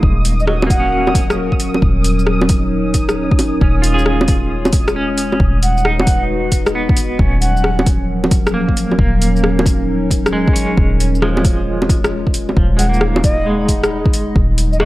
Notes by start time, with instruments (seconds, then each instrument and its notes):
Already playing: clean electric guitar G#3 A#3, ambient pad D#4 D#5, synth texture D#6
0.03 808-style bass D#1, ambient pad F#3, kick
0.15 ambient pad C#4 A#4
0.25 open hi-hat, shaker
0.40 ambient pad C#5, flute D#5, shaker
0.47 clean electric guitar F#3, ambient pad F#4, flute D#5, cross-stick
0.62 low bongo
0.67 clean electric guitar A#3, flute F#5, kick, open hi-hat, shaker
0.80 clean electric guitar C#4
1.07 low bongo
1.15 kick, open hi-hat, shaker
1.30 cross-stick, shaker
1.52 kick
1.60 open hi-hat, shaker
1.74 low bongo
1.82 808-style bass D#1, kick
2.04 open hi-hat, shaker
2.19 ambient pad D#4, shaker
2.27 cross-stick
2.41 low bongo
2.49 kick, open hi-hat, shaker
2.94 kick, open hi-hat, shaker
3.09 cross-stick, shaker
3.31 kick
3.39 open hi-hat, low bongo, shaker
3.61 808-style bass D#1, ambient pad G#3, clean electric guitar C#4, kick
3.82 clean electric guitar F4, open hi-hat, shaker
3.94 clean electric guitar G#4
3.99 shaker
4.04 ambient pad F4, cross-stick
4.21 low bongo
4.28 kick, open hi-hat, shaker
4.65 low bongo, shaker
4.73 kick, open hi-hat, shaker
4.88 cross-stick, shaker
4.96 clean electric guitar C#4
5.18 open hi-hat, shaker
5.32 low bongo
5.40 808-style bass D#1, kick
5.53 ambient pad D#4
5.63 flute F#5, open hi-hat, shaker
5.68 ambient pad B4
5.77 ambient pad F#4, shaker
5.85 clean electric guitar D#4, cross-stick
6.00 flute F#5, low bongo
6.07 kick, open hi-hat, shaker
6.22 ambient pad D#5
6.52 kick, open hi-hat, shaker
6.66 cross-stick, shaker
6.75 clean electric guitar B3
6.89 kick
6.97 open hi-hat, shaker
7.19 808-style bass D#1, ambient pad F#3, clean electric guitar C#4, kick
7.38 ambient pad C#4, flute F#5, open hi-hat, shaker
7.52 ambient pad F3 A#4
7.57 shaker
7.62 ambient pad C#5, cross-stick
7.79 low bongo
7.86 kick, open hi-hat, shaker
8.24 low bongo
8.31 kick, open hi-hat, shaker
8.47 cross-stick, shaker
8.54 clean electric guitar A#3
8.69 kick
8.77 open hi-hat, shaker
8.91 low bongo
8.98 808-style bass D#1, clean electric guitar A#3, kick
9.22 open hi-hat, shaker
9.32 ambient pad D#4
9.36 shaker
9.44 cross-stick
9.59 low bongo
9.66 kick, open hi-hat, shaker
10.11 kick, open hi-hat, shaker
10.26 cross-stick, shaker
10.33 clean electric guitar G#3
10.48 kick
10.53 clean electric guitar C#4, open hi-hat, shaker
10.77 808-style bass D#1, ambient pad G#3, kick
11.00 ambient pad F4, open hi-hat, shaker
11.15 shaker
11.22 clean electric guitar F3 G#3, cross-stick
11.37 low bongo
11.45 kick, open hi-hat, shaker
11.82 low bongo
11.89 kick, open hi-hat, shaker
12.04 cross-stick, shaker
12.27 kick
12.34 open hi-hat, shaker
12.49 low bongo
12.57 808-style bass D#1, clean electric guitar F3, kick
12.69 ambient pad D#4
12.77 clean electric guitar G#3, flute F#5, open hi-hat, shaker
12.89 clean electric guitar A#3
12.94 ambient pad B5, shaker
13.01 ambient pad F#5, cross-stick
13.16 low bongo
13.23 flute D#5, kick, open hi-hat, shaker
13.30 ambient pad D#5
13.46 clean electric guitar G#3
13.68 kick, open hi-hat, shaker
13.84 cross-stick, shaker
14.06 kick
14.14 open hi-hat, shaker
14.36 808-style bass D#1, ambient pad F#3, kick
14.58 ambient pad C#4, open hi-hat, shaker
14.69 flute D#5, ambient pad F#5, shaker
14.80 clean electric guitar A#3 F#4, flute D#5, cross-stick